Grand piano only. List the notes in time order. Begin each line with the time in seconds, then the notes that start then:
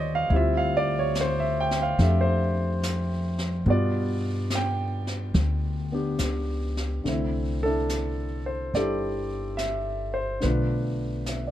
Already playing: D#3 G3 C#4 F4 C5 C#5 D5 D#5
0.15 F5
0.30 G3 E4
0.34 C4 F4 E5
0.57 F5
0.77 D5
0.99 C#5
1.21 C5
1.40 E5
1.60 G5
1.82 F5
2.00 A3 D4 G4 E5
2.21 C5
3.67 B2 G3 B3 F4 D5
4.55 G5
5.92 B3 D4 G4
7.04 D3 A3 C4
7.09 E4
7.63 D4 E4 A4
8.46 C5
8.74 G3 D4 E4 G4 A4 D5
9.57 E5
10.14 C5
10.40 D3 A3 B3 D4 F4 B4
11.29 E5
11.47 D5